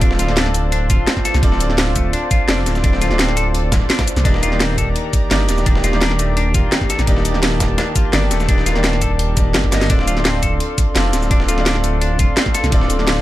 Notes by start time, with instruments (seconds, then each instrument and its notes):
Already playing: detuned saw bass D1, grand piano F4 A4 D5, analog synth pad F4 C5 D5 A5
0.00 grand piano C4 D4 F4 A4 D5, clean electric guitar D4, kick, closed hi-hat
0.11 snare
0.19 clean electric guitar F4, snare, closed hi-hat, cabasa
0.26 detuned saw bass D1, grand piano C4 D4 F4, snare
0.30 grand piano A4 D5
0.37 clean electric guitar D4, snare, closed hi-hat
0.46 snare
0.54 closed hi-hat, cabasa
0.72 clean electric guitar D4, closed hi-hat
0.90 clean electric guitar F4, kick, closed hi-hat, cabasa
1.07 clean electric guitar C4, snare, closed hi-hat
1.17 kick, snare
1.25 clean electric guitar A4, snare, closed hi-hat, cabasa
1.34 detuned saw bass C2, snare, cabasa
1.41 detuned saw bass D1, grand piano C4 D4 F4 A4 D5, kick, closed hi-hat
1.52 snare
1.60 closed hi-hat, cabasa
1.67 grand piano C4 D4 F4, snare
1.71 grand piano A4 D5
1.78 snare, closed hi-hat
1.96 clean electric guitar A3, kick, closed hi-hat, cabasa
2.13 clean electric guitar D4, closed hi-hat
2.31 clean electric guitar F4, kick, closed hi-hat, cabasa
2.47 detuned saw bass F1, grand piano C4 D4 F4 A4 D5, clean electric guitar D4, snare, closed hi-hat
2.66 detuned saw bass D1, snare, closed hi-hat, cabasa
2.75 snare, cabasa
2.82 grand piano C4 D4 F4 A4 D5, clean electric guitar D4, kick, closed hi-hat
2.93 snare
3.01 clean electric guitar F4, snare, closed hi-hat, cabasa
3.08 detuned saw bass D1, grand piano C4 D4 F4, snare
3.12 grand piano A4 D5
3.19 clean electric guitar C4, snare, closed hi-hat
3.29 snare
3.37 clean electric guitar A4, closed hi-hat, cabasa
3.54 closed hi-hat
3.72 kick, snare, closed hi-hat, cabasa
3.90 clean electric guitar D4, snare, closed hi-hat
3.99 kick, snare, closed hi-hat
4.08 closed hi-hat, cabasa
4.16 detuned saw bass C2, snare, closed hi-hat, cabasa
4.24 detuned saw bass D#1, grand piano A#3 D4 D#4 G4 D5, clean electric guitar D4, analog synth pad G4 A#5, kick, closed hi-hat
4.34 snare
4.43 clean electric guitar F4, closed hi-hat, cabasa
4.49 grand piano D#3 A#3 D4, snare
4.53 grand piano G4 D5
4.60 clean electric guitar C4, snare, closed hi-hat
4.78 clean electric guitar A4, kick, closed hi-hat, cabasa
4.96 closed hi-hat
5.13 kick, closed hi-hat, cabasa
5.30 detuned saw bass G1, grand piano A#3 D4 D#4 G4 D5, snare, closed hi-hat
5.49 detuned saw bass D#1, snare, closed hi-hat, cabasa
5.58 snare, cabasa
5.65 grand piano A#3 D4 D#4 G4 D5, clean electric guitar D4, kick, closed hi-hat
5.75 snare
5.84 clean electric guitar F4, snare, closed hi-hat, cabasa
5.92 detuned saw bass D#1, grand piano D#3 D4 G4, snare
5.96 grand piano D5
6.01 clean electric guitar D4, snare, closed hi-hat
6.11 snare
6.19 clean electric guitar A3, closed hi-hat, cabasa
6.37 clean electric guitar D4, closed hi-hat
6.54 clean electric guitar F4, kick, closed hi-hat, cabasa
6.72 clean electric guitar C4, snare, closed hi-hat
6.81 kick, snare
6.90 clean electric guitar A4, snare, closed hi-hat, cabasa
6.99 detuned saw bass A#1, snare, cabasa
7.06 detuned saw bass D#1, grand piano A#3 D4 D#4 G4 D5, analog synth pad A5, kick, closed hi-hat
7.17 snare
7.25 closed hi-hat, cabasa
7.32 grand piano D#3 A#3 D4, snare
7.36 grand piano G4 D5
7.43 snare, closed hi-hat
7.60 kick, snare, closed hi-hat, cabasa
7.78 clean electric guitar D4, snare, closed hi-hat
7.96 clean electric guitar F4, kick, closed hi-hat, cabasa
8.12 detuned saw bass G1, grand piano D#3 A#3 D4 G4 D5, clean electric guitar D4, snare, closed hi-hat
8.31 detuned saw bass D#1, clean electric guitar A3, snare, closed hi-hat, cabasa
8.40 snare, cabasa
8.47 grand piano A#3 D4 D#4 G4 D5, clean electric guitar D4, kick, closed hi-hat
8.58 snare
8.66 clean electric guitar F4, snare, closed hi-hat, cabasa
8.73 detuned saw bass D#1, grand piano D#3 A#3 D4, snare
8.77 grand piano G4 D5
8.84 clean electric guitar C4, snare, closed hi-hat
8.93 snare
9.02 clean electric guitar A4, kick, closed hi-hat, cabasa
9.19 closed hi-hat
9.36 grand piano A#3 D4 D#4 G4 D5, kick, closed hi-hat, cabasa
9.54 detuned saw bass G1, snare, closed hi-hat
9.64 kick, snare
9.71 grand piano A#3 D4 D#4 G4 D#5, snare, closed hi-hat, cabasa
9.81 snare, cabasa
9.89 detuned saw bass D1, grand piano C4 D4 F4 A4 D5, clean electric guitar D4, analog synth pad A4 D5 F5 C6, kick, closed hi-hat
9.99 snare
10.07 clean electric guitar F4, closed hi-hat, cabasa
10.14 grand piano C4 D4 F4, snare
10.18 grand piano A4 D5
10.25 clean electric guitar C4, snare, closed hi-hat
10.43 clean electric guitar A4, kick, closed hi-hat, cabasa
10.60 closed hi-hat
10.78 kick, closed hi-hat, cabasa
10.94 detuned saw bass F1, grand piano C4 D4 F4 A4 D5, snare, closed hi-hat
11.13 detuned saw bass D1, snare, closed hi-hat, cabasa
11.22 snare, cabasa
11.29 grand piano C4 D4 F4 A4 D5, clean electric guitar D4, kick, closed hi-hat
11.40 snare
11.48 clean electric guitar F4, snare, closed hi-hat, cabasa
11.55 detuned saw bass D1, grand piano C4 D4 F4, snare
11.59 grand piano A4 D5
11.66 clean electric guitar D4, snare, closed hi-hat
11.75 snare
11.84 clean electric guitar A3, closed hi-hat, open hi-hat, cabasa
12.01 clean electric guitar D4, closed hi-hat
12.19 clean electric guitar F4, kick, closed hi-hat, cabasa
12.37 clean electric guitar C4, snare, closed hi-hat
12.46 kick, snare
12.54 clean electric guitar A4, snare, closed hi-hat, cabasa
12.64 detuned saw bass C2, snare, cabasa
12.71 detuned saw bass D1, grand piano C4 D4 F4 A4 D5, kick, closed hi-hat
12.81 snare
12.90 closed hi-hat, cabasa
12.96 grand piano C4 D4 F4, snare
13.01 grand piano A4 D5
13.07 snare, closed hi-hat